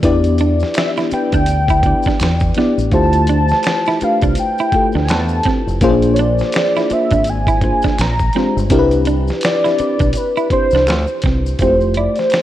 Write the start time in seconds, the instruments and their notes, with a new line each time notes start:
0.03 fingered electric bass E2, fm electric piano B3 D4 E4 G4 D5, kick, closed hi-hat, maracas
0.24 closed hi-hat, maracas
0.38 clean electric guitar D4, closed hi-hat, maracas
0.60 snare, maracas
0.74 soft synth lead E5, finger snap, snare, closed hi-hat, maracas
0.97 clean electric guitar E4, snare, maracas
1.11 fm electric piano B3 D4 E4 G4 B4, soft synth lead G5, muted fingered electric bass stroke, muted clean electric guitar stroke, closed hi-hat, maracas
1.32 fingered electric bass D2, clean electric guitar D4, kick, closed hi-hat, maracas
1.46 closed hi-hat, maracas
1.68 clean electric guitar E4, kick, maracas
1.83 fm electric piano B3 D4 E4 G4 D5, muted clean electric guitar stroke, kick, closed hi-hat
2.03 kick, maracas
2.07 clean electric guitar D4, snare
2.20 fingered electric bass E2, finger snap, snare, closed hi-hat, maracas
2.40 kick, maracas
2.54 fm electric piano B3 D4 E4 G4 D5, clean electric guitar B3, closed hi-hat
2.59 snare
2.78 fingered electric bass A1, maracas
2.92 fingered electric bass D2, fm electric piano A3 E4 F4 G4 C5, soft synth lead A5, kick, closed hi-hat, maracas
3.13 closed hi-hat, maracas
3.27 clean electric guitar D4, closed hi-hat, maracas
3.49 snare, maracas
3.63 finger snap, snare, closed hi-hat, maracas
3.86 clean electric guitar E4, snare, maracas
4.00 fm electric piano A3 D4 F4 G4 B4, soft synth lead F5, muted fingered electric bass stroke, muted clean electric guitar stroke, closed hi-hat, maracas
4.21 fingered electric bass C2, clean electric guitar D4, kick, closed hi-hat, maracas
4.35 closed hi-hat, maracas
4.39 soft synth lead G5
4.58 clean electric guitar E4, maracas
4.72 fm electric piano A3 E4 F4 G4 A4, muted fingered electric bass stroke, muted clean electric guitar stroke, kick, closed hi-hat
4.92 fingered electric bass D2, clean electric guitar D4, maracas
4.97 snare
5.05 soft synth lead G#5, finger snap, maracas
5.09 fingered electric bass E2, soft synth lead A5, snare, closed hi-hat
5.29 maracas
5.43 clean electric guitar C4, kick, closed hi-hat
5.48 snare
5.67 fingered electric bass F1, maracas
5.81 fingered electric bass A#1, fm electric piano A#3 C#4 F4 G#4 C5, kick, closed hi-hat, maracas
5.89 fm electric piano D4
6.02 closed hi-hat, maracas
6.13 soft synth lead C#5, closed hi-hat, maracas
6.19 clean electric guitar D4, soft synth lead D5
6.38 snare, maracas
6.52 finger snap, snare, closed hi-hat, maracas
6.76 clean electric guitar E4, snare, maracas
6.90 fm electric piano A#3 D4 F4 G#4 C5, soft synth lead E5, muted fingered electric bass stroke, muted clean electric guitar stroke, closed hi-hat, maracas
7.10 fingered electric bass G#1, clean electric guitar D4, kick, closed hi-hat, maracas
7.24 closed hi-hat, maracas
7.29 soft synth lead G#5
7.47 clean electric guitar E4, kick, maracas
7.61 fm electric piano A#3 D4 F4 G#4 C5, muted clean electric guitar stroke, kick, closed hi-hat
7.82 clean electric guitar D4, kick, maracas
7.86 snare
7.98 fingered electric bass A#1, soft synth lead A#5, finger snap, snare, closed hi-hat, maracas
8.19 kick, maracas
8.33 fm electric piano G#3 D4 F4 G4 C5, clean electric guitar C4, closed hi-hat
8.37 snare
8.56 fingered electric bass G1, maracas
8.70 fingered electric bass C2, fm electric piano C4 D4 E4 G4 A#4, kick, closed hi-hat, maracas
8.79 fm electric piano B4
8.91 closed hi-hat, maracas
9.05 clean electric guitar D4, closed hi-hat, maracas
9.28 snare, maracas
9.41 soft synth lead D5, finger snap, snare, closed hi-hat, maracas
9.65 clean electric guitar E4, snare, maracas
9.79 fm electric piano C4 D4 E4 G4 B4, muted fingered electric bass stroke, muted clean electric guitar stroke, closed hi-hat, maracas
9.99 fingered electric bass B1, clean electric guitar D4, kick, closed hi-hat, maracas
10.13 closed hi-hat, maracas
10.17 soft synth lead B4
10.37 clean electric guitar E4, maracas
10.50 fm electric piano C4 D4 E4 G4 C5, soft synth lead C5, muted fingered electric bass stroke, muted clean electric guitar stroke, kick, closed hi-hat
10.71 fingered electric bass C2, clean electric guitar D4, maracas
10.76 snare
10.87 fingered electric bass D2, finger snap, snare, closed hi-hat, maracas
11.07 maracas
11.22 fingered electric bass C2, clean electric guitar C4, kick, closed hi-hat
11.26 snare
11.46 maracas
11.59 fingered electric bass F1, fm electric piano G#3 E4 F4 G4 C5, clean electric guitar C4, soft synth lead C5, kick, closed hi-hat, maracas
11.67 fm electric piano A3
11.81 maracas
11.94 clean electric guitar E4, soft synth lead D5, closed hi-hat
12.16 soft synth lead C5, snare, closed hi-hat, maracas
12.30 finger snap, muted clean electric guitar stroke, snare, closed hi-hat, maracas